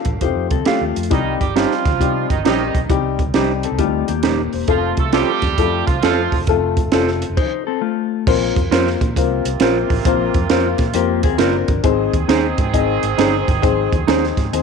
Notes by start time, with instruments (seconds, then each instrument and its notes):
0.05 fingered electric bass A1, kick, closed hi-hat
0.13 fingered electric bass G1
0.21 fingered electric bass F1, upright piano A3 C4 F4 G4, clean electric guitar D#4 C5, kick, closed hi-hat
0.36 fingered electric bass F2
0.51 fingered electric bass C2, clean electric guitar C4 A4, kick, closed hi-hat
0.59 fingered electric bass D2
0.65 upright piano A3 C4 F4 G4, clean electric guitar A3 F4 G4 A4 F5, muted fingered electric bass stroke, snare, closed hi-hat
0.81 fingered electric bass D#2
0.96 fingered electric bass F2, closed hi-hat
1.03 closed hi-hat
1.10 fingered electric bass C2, horn section D#3 D#4, upright piano G3 C4 D#4 G4, kick, closed hi-hat
1.40 fingered electric bass G1, horn section G3 G4, kick, closed hi-hat
1.55 horn section F3 F4, upright piano G3 C4 D#4 G4, clean electric guitar D#4 G4 C5, snare, closed hi-hat
1.71 snare
1.85 fingered electric bass D2, kick, snare, closed hi-hat
1.93 fingered electric bass C2
2.00 fingered electric bass C3, upright piano G3 C4 D#4 G4, kick, closed hi-hat
2.29 fingered electric bass G1, horn section D#3 D#4, kick, closed hi-hat
2.45 fingered electric bass A#1, horn section D#3 D#4, upright piano G3 C4 D#4 G4, clean electric guitar D#4 G4 C5, snare, closed hi-hat
2.75 fingered electric bass B1, kick, closed hi-hat
2.90 fingered electric bass C2, upright piano G3 C4 D#4 G4, kick, closed hi-hat
3.19 kick, closed hi-hat
3.27 fingered electric bass C2
3.34 fingered electric bass C2, upright piano G3 C4 D#4 G4, clean electric guitar D#4 G4 C5, snare, closed hi-hat
3.63 clean electric guitar C4 A4, closed hi-hat
3.71 fingered electric bass C2
3.78 fingered electric bass D2, upright piano G3 C4 D#4 G4, clean electric guitar A3 F4, kick, closed hi-hat
4.08 fingered electric bass D#2, clean electric guitar A#3 G4, closed hi-hat
4.23 fingered electric bass D#1, clean electric guitar D#4 G4 C5, upright piano A#4, snare, closed hi-hat
4.53 fingered electric bass E1, upright piano C5, open hi-hat
4.68 fingered electric bass F1, horn section F3 F4, upright piano A3 C4 F4 A4, kick, closed hi-hat
4.97 fingered electric bass C2, horn section A3 A4, kick, closed hi-hat
5.13 horn section G3 G4, upright piano A3 C4 F4 A4, clean electric guitar F4 A4 C5, snare, closed hi-hat
5.42 fingered electric bass F2, kick, snare, closed hi-hat
5.52 fingered electric bass D#2
5.58 fingered electric bass F2, upright piano A3 C4 F4 A4, kick, closed hi-hat
5.87 fingered electric bass C2, horn section F3 F4, kick, closed hi-hat
6.03 fingered electric bass F2, horn section F3 F4, upright piano A3 C4 F4 A4, clean electric guitar F4 A4 C5, snare, closed hi-hat
6.32 fingered electric bass E1, kick, open hi-hat
6.47 fingered electric bass F1, upright piano A3 C4 F4 A4, kick, closed hi-hat
6.77 kick, closed hi-hat
6.86 fingered electric bass F1
6.92 fingered electric bass F1, upright piano A3 C4 F4 A4, clean electric guitar F4 A4 C5, snare, closed hi-hat
7.07 snare
7.22 closed hi-hat
7.30 fingered electric bass F1
7.37 clean electric guitar D#4 C5, kick, crash
7.67 clean electric guitar C4 A4
7.81 clean electric guitar A3 F4
8.27 fingered electric bass A#1, upright piano A#3 C4 F4 A#4 C5, kick, crash
8.56 fingered electric bass F2, kick, closed hi-hat
8.71 fingered electric bass F2, upright piano A#3 C4 F4 A#4 C5, clean electric guitar F4 A#4 C5, snare, closed hi-hat
8.87 snare
9.01 fingered electric bass A#2, kick, closed hi-hat
9.16 fingered electric bass C2, horn section C3 A#3 F4, upright piano A#3 C4 F4 A#4 C5, kick, closed hi-hat
9.45 fingered electric bass C2, closed hi-hat
9.60 fingered electric bass A#1, upright piano A#3 C4 F4 A#4 C5, clean electric guitar F4 A#4 C5, snare, closed hi-hat
9.90 fingered electric bass A1, kick, open hi-hat
10.05 fingered electric bass A#1, upright piano A#3 C4 F4 A#4 C5, kick, closed hi-hat
10.34 fingered electric bass F2, kick, closed hi-hat
10.50 fingered electric bass F2, upright piano A#3 C4 F4 A#4 C5, clean electric guitar F4 A#4 C5, snare, closed hi-hat
10.78 fingered electric bass A#2, kick, snare, closed hi-hat
10.94 fingered electric bass F2, upright piano A#3 C4 F4 A#4 C5, clean electric guitar A#3 G4, closed hi-hat
11.23 fingered electric bass D#2, clean electric guitar C4 G#4, kick, closed hi-hat
11.38 fingered electric bass F#1, upright piano A#3 C4 F4 A#4 C5, clean electric guitar D4 F4 A#4 C5, snare, closed hi-hat
11.68 fingered electric bass G1, kick, closed hi-hat
11.83 fingered electric bass G#1, horn section D#3 C4 G#4, upright piano G#3 C4 D#4 G#4 C5, kick, closed hi-hat
12.13 fingered electric bass D#2, kick, closed hi-hat
12.28 fingered electric bass D#2, upright piano G#3 C4 D#4 G#4 C5, clean electric guitar D#4 G#4 C5, snare, closed hi-hat
12.58 fingered electric bass G#2, kick, closed hi-hat
12.74 fingered electric bass G#1, upright piano G#3 C4 D#4 G#4 D#5, kick, closed hi-hat
13.03 fingered electric bass G#1, closed hi-hat
13.17 fingered electric bass G1, upright piano G#3 C4 D#4 G#4 C5, clean electric guitar D#4 G#4 C5, snare, closed hi-hat
13.48 fingered electric bass G1, kick, closed hi-hat
13.62 fingered electric bass G#1, upright piano G#3 C4 D#4 G#4 C5, kick, closed hi-hat
13.92 fingered electric bass D#2, kick, closed hi-hat
14.07 fingered electric bass D#2, upright piano G#3 C4 D#4 G#4 C5, clean electric guitar D#4 G#4 C5, snare, closed hi-hat
14.24 snare
14.37 fingered electric bass G#2, kick, snare, closed hi-hat
14.53 fingered electric bass D#2, upright piano G#3 C4 D#4 G#4 C5, closed hi-hat